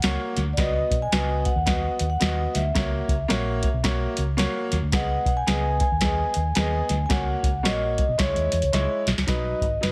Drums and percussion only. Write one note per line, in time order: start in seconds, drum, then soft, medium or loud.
0.02 snare loud
0.02 closed hi-hat medium
0.37 snare soft
0.37 closed hi-hat medium
0.57 kick loud
0.57 snare loud
0.57 closed hi-hat medium
0.91 kick medium
0.91 closed hi-hat medium
1.12 snare loud
1.12 closed hi-hat medium
1.45 kick medium
1.45 closed hi-hat medium
1.67 kick loud
1.67 snare loud
1.67 closed hi-hat medium
1.99 closed hi-hat medium
2.21 snare loud
2.21 closed hi-hat medium
2.55 snare soft
2.55 closed hi-hat medium
2.75 kick loud
2.75 snare loud
2.75 closed hi-hat loud
3.08 kick medium
3.08 closed hi-hat medium
3.30 snare loud
3.30 closed hi-hat medium
3.63 kick medium
3.63 closed hi-hat medium
3.84 kick loud
3.84 snare loud
3.84 closed hi-hat medium
4.17 closed hi-hat medium
4.38 snare loud
4.38 closed hi-hat medium
4.72 snare soft
4.72 closed hi-hat medium
4.92 kick loud
4.92 snare loud
4.92 closed hi-hat loud
5.26 kick medium
5.26 closed hi-hat medium
5.48 snare loud
5.48 closed hi-hat medium
5.80 kick medium
5.80 closed hi-hat medium
6.01 kick medium
6.01 snare loud
6.01 closed hi-hat medium
6.34 closed hi-hat medium
6.55 snare loud
6.55 closed hi-hat medium
6.89 snare soft
6.89 closed hi-hat medium
7.10 kick loud
7.10 snare loud
7.10 closed hi-hat medium
7.43 kick medium
7.43 closed hi-hat medium
7.65 snare loud
7.65 closed hi-hat medium
7.98 kick medium
7.98 closed hi-hat medium
8.19 kick loud
8.19 snare loud
8.19 closed hi-hat medium
8.36 closed hi-hat medium
8.52 closed hi-hat medium
8.62 closed hi-hat medium
8.73 snare medium
8.73 closed hi-hat medium
9.07 snare medium
9.07 closed hi-hat medium
9.18 snare medium
9.28 kick loud
9.28 snare loud
9.28 closed hi-hat medium
9.61 kick medium
9.61 closed hi-hat medium
9.83 snare loud
9.83 closed hi-hat medium